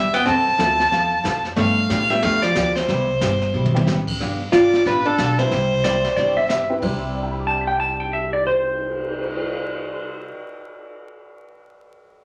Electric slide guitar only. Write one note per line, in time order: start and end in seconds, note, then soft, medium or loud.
5.84 6.15 D5 medium
6.16 6.36 D5 medium
6.37 6.48 E5 medium
6.49 6.75 E5 medium
7.47 7.67 A5 medium
7.67 7.79 G5 medium
7.80 8.00 A5 medium
8.00 8.13 G5 medium
8.13 8.33 E5 medium
8.33 8.45 D5 medium
8.47 10.21 C5 medium